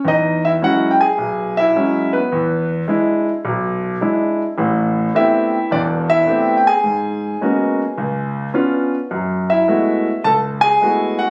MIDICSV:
0, 0, Header, 1, 2, 480
1, 0, Start_track
1, 0, Key_signature, 4, "major"
1, 0, Tempo, 566038
1, 46, Time_signature, 4, 2, 24, 8
1, 9582, End_track
2, 0, Start_track
2, 0, Title_t, "Grand piano"
2, 0, Program_c, 0, 0
2, 39, Note_on_c, 0, 40, 59
2, 67, Note_on_c, 0, 75, 81
2, 72, Note_on_c, 0, 63, 63
2, 356, Note_off_c, 0, 75, 0
2, 358, Note_off_c, 0, 63, 0
2, 380, Note_on_c, 0, 76, 76
2, 395, Note_on_c, 0, 64, 57
2, 422, Note_off_c, 0, 76, 0
2, 437, Note_off_c, 0, 64, 0
2, 459, Note_off_c, 0, 40, 0
2, 524, Note_on_c, 0, 54, 47
2, 527, Note_on_c, 0, 61, 45
2, 528, Note_on_c, 0, 56, 46
2, 529, Note_on_c, 0, 64, 51
2, 542, Note_on_c, 0, 78, 82
2, 555, Note_on_c, 0, 66, 64
2, 759, Note_off_c, 0, 78, 0
2, 766, Note_off_c, 0, 66, 0
2, 770, Note_on_c, 0, 79, 65
2, 848, Note_off_c, 0, 79, 0
2, 853, Note_on_c, 0, 80, 80
2, 862, Note_off_c, 0, 54, 0
2, 863, Note_off_c, 0, 61, 0
2, 864, Note_off_c, 0, 56, 0
2, 864, Note_off_c, 0, 64, 0
2, 866, Note_on_c, 0, 68, 68
2, 1002, Note_on_c, 0, 35, 54
2, 1303, Note_off_c, 0, 68, 0
2, 1334, Note_on_c, 0, 76, 84
2, 1344, Note_off_c, 0, 80, 0
2, 1352, Note_on_c, 0, 64, 68
2, 1421, Note_off_c, 0, 35, 0
2, 1483, Note_off_c, 0, 64, 0
2, 1490, Note_on_c, 0, 56, 50
2, 1491, Note_on_c, 0, 54, 51
2, 1493, Note_on_c, 0, 61, 47
2, 1495, Note_on_c, 0, 64, 58
2, 1777, Note_off_c, 0, 76, 0
2, 1807, Note_on_c, 0, 71, 71
2, 1824, Note_off_c, 0, 56, 0
2, 1825, Note_off_c, 0, 54, 0
2, 1826, Note_off_c, 0, 61, 0
2, 1827, Note_off_c, 0, 64, 0
2, 1829, Note_on_c, 0, 59, 52
2, 1969, Note_on_c, 0, 40, 60
2, 2253, Note_off_c, 0, 71, 0
2, 2265, Note_off_c, 0, 59, 0
2, 2384, Note_off_c, 0, 40, 0
2, 2440, Note_on_c, 0, 56, 52
2, 2446, Note_on_c, 0, 62, 45
2, 2453, Note_on_c, 0, 64, 57
2, 2779, Note_off_c, 0, 56, 0
2, 2782, Note_off_c, 0, 62, 0
2, 2786, Note_off_c, 0, 64, 0
2, 2923, Note_on_c, 0, 35, 60
2, 3341, Note_off_c, 0, 35, 0
2, 3403, Note_on_c, 0, 56, 51
2, 3408, Note_on_c, 0, 64, 57
2, 3409, Note_on_c, 0, 62, 48
2, 3740, Note_off_c, 0, 56, 0
2, 3743, Note_off_c, 0, 64, 0
2, 3744, Note_off_c, 0, 62, 0
2, 3881, Note_on_c, 0, 33, 62
2, 3886, Note_on_c, 0, 45, 60
2, 4299, Note_off_c, 0, 33, 0
2, 4302, Note_off_c, 0, 45, 0
2, 4367, Note_on_c, 0, 57, 51
2, 4370, Note_on_c, 0, 59, 48
2, 4370, Note_on_c, 0, 62, 45
2, 4373, Note_on_c, 0, 60, 46
2, 4376, Note_on_c, 0, 67, 59
2, 4376, Note_on_c, 0, 76, 79
2, 4389, Note_on_c, 0, 64, 60
2, 4702, Note_off_c, 0, 57, 0
2, 4704, Note_off_c, 0, 59, 0
2, 4704, Note_off_c, 0, 62, 0
2, 4705, Note_off_c, 0, 60, 0
2, 4707, Note_off_c, 0, 67, 0
2, 4824, Note_off_c, 0, 64, 0
2, 4843, Note_on_c, 0, 28, 60
2, 4844, Note_on_c, 0, 40, 60
2, 4851, Note_on_c, 0, 74, 78
2, 4863, Note_on_c, 0, 62, 58
2, 4864, Note_off_c, 0, 76, 0
2, 4923, Note_off_c, 0, 74, 0
2, 4933, Note_off_c, 0, 62, 0
2, 5169, Note_on_c, 0, 76, 91
2, 5179, Note_on_c, 0, 64, 66
2, 5260, Note_off_c, 0, 28, 0
2, 5261, Note_off_c, 0, 40, 0
2, 5318, Note_on_c, 0, 57, 52
2, 5318, Note_on_c, 0, 59, 47
2, 5320, Note_on_c, 0, 60, 51
2, 5321, Note_on_c, 0, 62, 48
2, 5325, Note_on_c, 0, 67, 59
2, 5540, Note_off_c, 0, 76, 0
2, 5545, Note_off_c, 0, 64, 0
2, 5573, Note_on_c, 0, 79, 67
2, 5648, Note_off_c, 0, 79, 0
2, 5657, Note_off_c, 0, 59, 0
2, 5658, Note_off_c, 0, 57, 0
2, 5658, Note_off_c, 0, 60, 0
2, 5658, Note_on_c, 0, 80, 87
2, 5659, Note_off_c, 0, 62, 0
2, 5661, Note_off_c, 0, 67, 0
2, 5671, Note_on_c, 0, 68, 68
2, 5798, Note_on_c, 0, 44, 63
2, 6217, Note_off_c, 0, 44, 0
2, 6287, Note_on_c, 0, 56, 51
2, 6291, Note_on_c, 0, 58, 46
2, 6292, Note_on_c, 0, 61, 46
2, 6294, Note_on_c, 0, 59, 44
2, 6294, Note_on_c, 0, 66, 55
2, 6622, Note_off_c, 0, 56, 0
2, 6624, Note_off_c, 0, 58, 0
2, 6624, Note_off_c, 0, 61, 0
2, 6625, Note_off_c, 0, 59, 0
2, 6625, Note_off_c, 0, 66, 0
2, 6764, Note_on_c, 0, 37, 59
2, 7180, Note_off_c, 0, 37, 0
2, 7240, Note_on_c, 0, 59, 51
2, 7241, Note_on_c, 0, 61, 47
2, 7246, Note_on_c, 0, 62, 46
2, 7248, Note_on_c, 0, 65, 57
2, 7536, Note_off_c, 0, 80, 0
2, 7542, Note_off_c, 0, 68, 0
2, 7578, Note_off_c, 0, 59, 0
2, 7578, Note_off_c, 0, 61, 0
2, 7581, Note_off_c, 0, 62, 0
2, 7582, Note_off_c, 0, 65, 0
2, 7725, Note_on_c, 0, 42, 60
2, 8054, Note_on_c, 0, 76, 74
2, 8071, Note_on_c, 0, 64, 55
2, 8140, Note_off_c, 0, 42, 0
2, 8200, Note_off_c, 0, 64, 0
2, 8208, Note_on_c, 0, 56, 50
2, 8209, Note_on_c, 0, 57, 47
2, 8210, Note_on_c, 0, 59, 44
2, 8213, Note_on_c, 0, 64, 48
2, 8215, Note_on_c, 0, 66, 53
2, 8541, Note_off_c, 0, 56, 0
2, 8542, Note_off_c, 0, 57, 0
2, 8542, Note_off_c, 0, 59, 0
2, 8544, Note_off_c, 0, 64, 0
2, 8545, Note_off_c, 0, 66, 0
2, 8687, Note_on_c, 0, 37, 59
2, 8687, Note_on_c, 0, 81, 91
2, 8705, Note_on_c, 0, 69, 68
2, 8706, Note_off_c, 0, 76, 0
2, 8758, Note_off_c, 0, 81, 0
2, 8774, Note_off_c, 0, 69, 0
2, 8998, Note_on_c, 0, 80, 108
2, 9021, Note_on_c, 0, 68, 73
2, 9101, Note_off_c, 0, 37, 0
2, 9168, Note_on_c, 0, 56, 50
2, 9175, Note_on_c, 0, 57, 48
2, 9177, Note_on_c, 0, 59, 49
2, 9178, Note_on_c, 0, 64, 46
2, 9180, Note_on_c, 0, 66, 60
2, 9458, Note_off_c, 0, 68, 0
2, 9486, Note_on_c, 0, 78, 82
2, 9489, Note_off_c, 0, 66, 0
2, 9495, Note_off_c, 0, 80, 0
2, 9501, Note_off_c, 0, 56, 0
2, 9502, Note_on_c, 0, 66, 57
2, 9505, Note_off_c, 0, 57, 0
2, 9506, Note_off_c, 0, 59, 0
2, 9506, Note_off_c, 0, 64, 0
2, 9582, Note_off_c, 0, 66, 0
2, 9582, Note_off_c, 0, 78, 0
2, 9582, End_track
0, 0, End_of_file